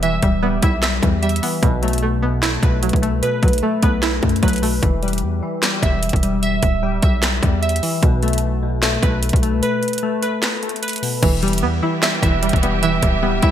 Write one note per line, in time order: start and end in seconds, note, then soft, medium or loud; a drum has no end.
0.00 0.21 E1 loud
0.00 0.23 E3 medium
0.00 1.01 E3 loud
0.00 0.21 G3 medium
0.00 0.42 G3 medium
0.00 0.41 B3 medium
0.00 0.23 E5 medium
0.00 0.61 E5 loud
0.00 closed hi-hat medium
0.22 0.61 D1 loud
0.22 1.21 G3 medium
0.22 kick medium
0.22 closed hi-hat medium
0.43 1.01 G3 medium
0.43 1.41 B3 medium
0.62 1.01 B1 loud
0.62 1.63 E4 medium
0.62 1.21 E5 medium
0.62 kick loud
0.62 closed hi-hat medium
0.83 1.63 E5 loud
0.83 finger snap medium
0.83 snare loud
0.83 closed hi-hat medium
1.03 1.41 E2 loud
1.03 1.63 E3 medium
1.03 1.63 G3 medium
1.03 kick loud
1.03 closed hi-hat medium
1.22 1.63 G3 medium
1.22 1.63 E5 medium
1.22 closed hi-hat medium
1.29 closed hi-hat medium
1.36 closed hi-hat medium
1.43 1.63 E3 medium
1.43 1.63 B3 medium
1.43 open hi-hat medium
1.63 2.59 B1 loud
1.63 2.21 B2 loud
1.63 2.61 B2 loud
1.63 kick loud
1.63 closed hi-hat medium
1.83 2.81 F#3 medium
1.83 2.41 A3 medium
1.83 closed hi-hat soft
1.88 closed hi-hat medium
1.93 closed hi-hat medium
1.98 closed hi-hat medium
2.03 3.01 A3 medium
2.23 3.43 B2 medium
2.23 3.23 B3 medium
2.42 3.01 A3 medium
2.42 3.43 E4 loud
2.42 finger snap medium
2.42 snare loud
2.42 closed hi-hat medium
2.63 2.92 B1 loud
2.63 3.21 B2 medium
2.63 3.21 B4 medium
2.63 kick loud
2.63 closed hi-hat medium
2.83 3.41 F#3 medium
2.83 closed hi-hat medium
2.89 3.15 B1 loud
2.89 kick medium
2.89 closed hi-hat medium
2.96 closed hi-hat soft
3.03 3.61 A3 medium
3.03 3.62 A3 medium
3.03 closed hi-hat medium
3.13 3.22 C2 loud
3.23 4.21 B2 medium
3.23 3.81 B4 loud
3.23 closed hi-hat medium
3.43 3.62 B1 loud
3.43 4.42 F#3 medium
3.43 kick medium
3.43 closed hi-hat soft
3.48 closed hi-hat medium
3.53 closed hi-hat medium
3.58 closed hi-hat medium
3.63 4.61 A3 medium
3.63 4.21 A3 medium
3.83 4.21 B1 loud
3.83 4.83 B3 medium
3.83 4.41 B4 medium
3.83 kick loud
3.83 closed hi-hat medium
4.03 4.83 E4 loud
4.03 finger snap medium
4.03 snare loud
4.03 closed hi-hat medium
4.23 4.42 F#2 loud
4.23 4.83 B2 medium
4.23 4.83 A3 medium
4.23 kick loud
4.23 closed hi-hat soft
4.29 closed hi-hat soft
4.36 closed hi-hat medium
4.43 4.81 B1 loud
4.43 4.83 F#3 medium
4.43 4.83 B4 medium
4.43 kick loud
4.43 closed hi-hat medium
4.48 closed hi-hat medium
4.53 closed hi-hat medium
4.56 closed hi-hat medium
4.58 closed hi-hat medium
4.62 4.83 B2 medium
4.62 4.83 A3 medium
4.62 open hi-hat medium
4.83 5.24 E1 loud
4.83 5.41 E3 medium
4.83 kick loud
4.83 closed hi-hat medium
5.03 5.61 G3 medium
5.03 closed hi-hat soft
5.08 closed hi-hat medium
5.13 closed hi-hat medium
5.18 closed hi-hat medium
5.23 5.42 E2 loud
5.42 6.63 E3 medium
5.62 6.22 G3 medium
5.62 finger snap loud
5.62 snare loud
5.62 closed hi-hat medium
5.83 6.12 E1 loud
5.83 6.41 E5 medium
5.83 kick loud
5.83 closed hi-hat medium
6.03 closed hi-hat medium
6.09 6.61 E1 loud
6.09 kick medium
6.09 closed hi-hat medium
6.16 closed hi-hat soft
6.23 6.82 G3 medium
6.23 closed hi-hat medium
6.43 7.01 E5 loud
6.43 closed hi-hat medium
6.63 7.01 D1 loud
6.63 kick medium
6.63 closed hi-hat medium
6.83 7.41 G3 medium
7.02 7.41 B1 loud
7.02 7.61 E5 medium
7.02 kick loud
7.02 closed hi-hat medium
7.23 finger snap loud
7.23 snare loud
7.23 closed hi-hat medium
7.43 7.81 E2 loud
7.43 8.03 G3 medium
7.43 kick loud
7.43 closed hi-hat medium
7.62 8.03 E5 medium
7.62 closed hi-hat medium
7.69 closed hi-hat medium
7.76 closed hi-hat medium
7.83 8.03 E3 medium
7.83 open hi-hat medium
8.03 8.99 B1 loud
8.03 8.61 B2 loud
8.03 kick loud
8.03 closed hi-hat medium
8.23 8.81 A3 medium
8.23 closed hi-hat soft
8.28 closed hi-hat medium
8.33 closed hi-hat medium
8.38 closed hi-hat medium
8.63 9.83 B2 medium
8.83 9.41 A3 medium
8.83 finger snap medium
8.83 snare loud
8.83 closed hi-hat medium
9.03 9.32 B1 loud
9.03 9.61 B4 medium
9.03 kick loud
9.03 closed hi-hat medium
9.23 closed hi-hat medium
9.29 9.55 B1 loud
9.29 kick medium
9.29 closed hi-hat medium
9.36 closed hi-hat medium
9.43 10.02 A3 medium
9.43 closed hi-hat medium
9.53 9.62 C2 loud
9.63 10.21 B4 loud
9.63 closed hi-hat medium
9.83 closed hi-hat soft
9.88 closed hi-hat medium
9.93 closed hi-hat medium
9.98 closed hi-hat medium
10.03 10.62 A3 medium
10.23 10.81 B4 medium
10.23 closed hi-hat medium
10.43 finger snap medium
10.43 snare loud
10.43 closed hi-hat medium
10.63 11.23 A3 medium
10.63 closed hi-hat soft
10.69 closed hi-hat soft
10.76 closed hi-hat soft
10.83 11.23 B4 medium
10.83 closed hi-hat medium
10.88 closed hi-hat medium
10.93 closed hi-hat medium
10.96 closed hi-hat medium
10.98 closed hi-hat soft
11.03 11.23 B2 medium
11.03 open hi-hat medium
11.23 11.64 E1 loud
11.23 12.22 E3 medium
11.23 11.81 E3 medium
11.23 13.51 E3 medium
11.23 13.51 B3 medium
11.23 13.51 G4 medium
11.23 13.51 E5 medium
11.23 kick loud
11.23 closed hi-hat medium
11.23 crash loud
11.43 12.01 G3 medium
11.43 12.41 G3 medium
11.43 closed hi-hat soft
11.48 closed hi-hat medium
11.53 closed hi-hat medium
11.58 closed hi-hat medium
11.63 11.82 E2 loud
11.63 12.61 B3 medium
11.83 13.03 E3 medium
11.83 12.83 E4 medium
12.02 12.62 G3 medium
12.02 13.03 E5 medium
12.02 finger snap loud
12.02 snare loud
12.02 closed hi-hat medium
12.23 12.52 E1 loud
12.23 12.81 E3 medium
12.23 12.81 E5 medium
12.23 kick loud
12.23 closed hi-hat medium
12.43 13.01 G3 medium
12.43 closed hi-hat medium
12.49 13.01 E1 loud
12.49 kick loud
12.49 closed hi-hat medium
12.56 closed hi-hat soft
12.63 13.22 G3 medium
12.63 13.21 B3 medium
12.63 closed hi-hat medium
12.83 13.51 E3 loud
12.83 13.41 E5 loud
12.83 closed hi-hat medium
13.03 13.41 D1 loud
13.03 13.51 G3 medium
13.03 kick medium
13.03 closed hi-hat medium
13.23 13.51 G3 loud
13.23 13.51 B3 medium
13.42 13.51 B1 loud
13.42 13.51 E4 medium
13.42 13.51 E5 medium
13.42 kick loud
13.42 closed hi-hat medium